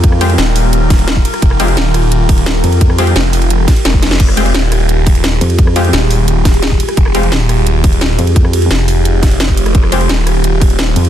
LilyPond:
<<
  \new Staff \with { instrumentName = "Ambient pad" } { \time 4/4 \key f \minor \tempo 4 = 173 << { bes'1~ | bes'1~ | bes'1 | aes'1~ |
aes'1~ | aes'1~ | aes'1 | c''1 | } \\ { <f' g'>1~ | <f' g'>1~ | <f' g'>1~ | <f' g'>1~ |
<f' g'>1~ | <f' g'>1~ | <f' g'>1~ | <f' g'>1 | } >> }
  \new Staff \with { instrumentName = "Synth stab" } { \time 4/4 \key f \minor r8 <aes c' f' g'>8 r2. | r8 <aes c' f' g'>16 r2. r16 | r8 <aes c' f' g'>8 r2. | r8 <aes c' f' g'>16 r2. r16 |
r8 <aes c' f' g'>8 r2. | r8 <aes c' f' g'>16 r2. r16 | r1 | r8 <aes c' f' g'>16 r2. r16 | }
  \new Staff \with { instrumentName = "Wobble bass" } { \clef bass \time 4/4 \key f \minor f,4 r2. | r2. r8 f,8~ | f,4 r2. | r2. r8 f,8~ |
f,4 r2. | r2. r8 f,8~ | f,4 r2. | r2. r8 f,8 | }
  \new Staff \with { instrumentName = "Detuned saw bass" } { \clef bass \time 4/4 \key f \minor r4 ees,,2~ ees,,8 r8 | f,,4 ees,,2~ ees,,8 r8 | r4 f,,4. r8 f,,4 | f,,4 ees,,2~ ees,,8 r8 |
r4 ees,,2~ ees,,8 r8 | f,,4 ees,,2~ ees,,8 r8 | r4 f,,2~ f,,8 f,,8 | f,,4 ees,,2~ ees,,8 r8 | }
  \new DrumStaff \with { instrumentName = "Drums" } \drummode { \time 4/4 <hh bd>16 ss16 <hh cymr>16 hh16 <hh sn>8 <hho cymr>8 hh8 <hh bd cymr sn>16 hh16 <hh sn>16 bd16 <hh cymr>16 <hh ss>16 | <hh bd>16 ss16 <hh cymr>16 hh16 <hh sn>8 <hh cymr ss>8 hh8 <hh bd cymr>16 hh16 <hh sn>8 <hh cymr>16 hh16 | <hh bd>16 ss16 <hh cymr>16 hh16 <hh sn>8 <hho cymr>16 hh16 hh8 <hh bd cymr sn>16 hh16 <hh sn>16 bd16 <hh cymr sn>16 <hh sn>16 | <cymc hh bd>16 ss16 <hh cymr>16 hh16 <hh sn>8 <hh cymr ss>8 hh8 <hh bd cymr>16 hh16 <hh sn>8 <hh cymr>16 hh16 |
<hh bd>16 ss16 <hh cymr>16 hh16 <hh sn>8 <hho cymr>8 hh8 <hh bd cymr sn>16 hh16 <hh sn>16 bd16 <hh cymr>16 <hh ss>16 | <hh bd>16 ss16 <hh cymr>16 hh16 <hh sn>8 <hh cymr ss>8 hh8 <hh bd cymr>16 hh16 <hh sn>8 <hh cymr>16 hh16 | <hh bd>16 ss16 <hh cymr>16 hh16 <hh sn>8 <hho cymr>8 hh8 <hh bd cymr sn>16 hh16 <hh sn>16 bd16 <hh cymr>16 <hh ss>16 | <hh bd>16 ss16 <hh cymr>16 hh16 <hh sn>8 <hh cymr ss>8 hh8 <hh bd cymr>16 hh16 <hh sn>8 <hh cymr>16 hh16 | }
>>